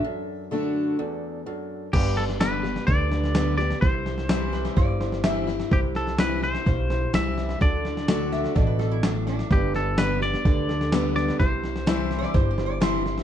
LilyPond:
<<
  \new Staff \with { instrumentName = "Resonator guitar played with a steel bar" } { \time 4/4 \key g \major \tempo 4 = 127 e''4 r2. | r1 | r4. b'16 c''16 d''4 e''8 r8 | r1 |
r4. e''8 d''16 b'16 a'16 e'16 d'8 d'8 | r1 | r4 \tuplet 3/2 { r4 d''8 c''8 g'8 d''8 } c''8. r16 | }
  \new Staff \with { instrumentName = "Clean electric guitar" } { \time 4/4 \key g \major r1 | g'8 a'8 b'4 d''4. d''8 | c''2 r2 | g'8 a'8 b'8 c''4. e''4 |
d''2.~ d''8 r8 | g'8 a'8 b'8 d''2 d''8 | c''2 r2 | }
  \new Staff \with { instrumentName = "Grand piano" } { \time 4/4 \key g \major <d' fis' a'>4 <d' fis' a'>4 <d' fis' a'>4 <d' fis' a'>4 | <d' g' b'>4 <d' g' b'>4 <d' g' b'>8 <d' g' b'>8 <d' g' b'>4 | <e' g' c''>4 <e' g' c''>4 <e' g' c''>8 <e' g' c''>8 <e' g' c''>4 | <e' g' c''>4 <e' g' c''>4 <e' g' c''>8 <e' g' c''>8 <e' g' c''>4 |
<d' fis' a'>4 <d' fis' a'>4 <d' fis' a'>8 <d' fis' a'>8 <d' fis' a'>4 | <d' g' b'>4 <d' g' b'>4 <d' g' b'>8 <d' g' a'>8 <d' g' b'>4 | <e' g' c''>4 <e' g' c''>4 <e' g' c''>8 <e' g' c''>8 <e' g' c''>4 | }
  \new Staff \with { instrumentName = "Steel-string acoustic guitar" } { \clef bass \time 4/4 \key g \major << { r4 <d a d' fis'>4 r2 | r4 <d g b g'>8 <b g'>8 r4 <d g b g'>8 <b g'>8 | r4 <e g c' e'>4 r4 <e g c' e'>8 <c' e'>8 | r4 <e g c' e'>8 <c' e'>8 r4 <e g c' e'>4 |
r4 <d a d' fis'>4 r2 | r4 <d g b g'>8 <b g'>8 r4 <d g b g'>4 | r4 <e g c' e'>4 r4 <e g c' e'>8 <c' e'>8 | } \\ { fis,2 e,4 fis,4 | g,2 d2 | c2 g,2 | c2 g,2 |
d2 b,4 a,4 | g,2 d2 | c2 g,2 | } >> }
  \new Staff \with { instrumentName = "Upright bass" } { \clef bass \time 4/4 \key g \major r1 | g,,2 d,2 | c,2 g,,2 | c,2 b,,4 c,4 |
d,2 a,,2 | g,,2 d,2 | c,2 g,,2 | }
  \new DrumStaff \with { instrumentName = "Drums" } \drummode { \time 4/4 r4 r4 r4 r4 | <cymc bd sn>8 sn16 sn16 <hhp sn>8 sn16 sn16 <bd sn>8 sn16 sn16 <hhp sn>8 sn16 sn16 | <bd sn>8 sn16 sn16 <hhp sn>8 sn16 sn16 <bd sn>8 sn16 sn16 <hhp sn>8 sn16 sn16 | <bd sn>8 sn16 sn16 <hhp sn>8 sn16 sn16 <bd sn>8 sn8 <hhp sn>8 sn16 sn16 |
<bd sn>8 sn16 sn16 <hhp sn>8 sn16 sn16 <bd sn>8 sn8 <hhp sn>8 sn16 sn16 | <bd sn>8 sn8 <hhp sn>8 sn16 sn16 <bd sn>8 sn16 sn16 <hhp sn>8 sn16 sn16 | <bd sn>8 sn16 sn16 <hhp sn>8 sn16 sn16 <bd sn>8 sn8 <hhp sn>8 sn16 sn16 | }
>>